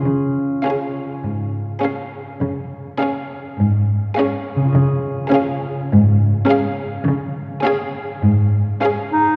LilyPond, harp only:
\new Staff \with { instrumentName = "Harp" } { \time 4/4 \key des \major \tempo 4 = 103 <des des' f' aes'>1~ | <des des' f' aes'>1 | <des des' f' aes'>1~ | <des des' f' aes'>1 | }